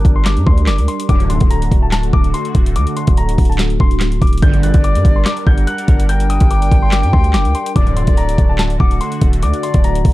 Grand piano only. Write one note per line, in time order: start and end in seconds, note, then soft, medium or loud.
0.00 0.14 D6 medium
0.16 0.25 C6 medium
0.26 0.44 D6 medium
0.46 0.65 C6 medium
0.67 0.86 D6 medium
0.88 1.07 C6 medium
1.09 1.28 D6 loud
1.30 1.48 C6 medium
1.50 1.81 A#5 medium
1.82 1.91 A5 medium
1.92 2.11 A5 loud
2.13 2.32 D6 loud
2.34 2.73 C6 medium
2.76 2.95 D6 medium
2.97 3.15 C6 medium
3.18 3.48 A#5 medium
3.50 3.58 A5 medium
3.80 4.19 C6 medium
4.22 4.40 D6 medium
4.42 4.61 G6 loud
4.63 4.82 F#6 medium
4.84 5.14 D6 loud
5.16 5.25 C6 medium
5.26 5.44 D6 medium
5.47 5.65 G6 medium
5.67 6.07 F#6 medium
6.09 6.28 G6 medium
6.30 6.49 D#6 medium
6.51 6.81 D6 medium
6.83 6.91 C6 medium
6.93 7.11 D6 medium
7.13 7.32 C6 medium
7.34 7.53 D6 medium
7.55 7.74 C6 medium
7.76 7.95 D6 loud
7.97 8.15 C6 medium
8.17 8.47 A#5 medium
8.49 8.57 A5 medium
8.59 8.78 A5 loud
8.80 8.99 D6 loud
9.01 9.40 C6 medium
9.43 9.61 D6 medium
9.63 9.82 C6 medium
9.84 10.13 A#5 medium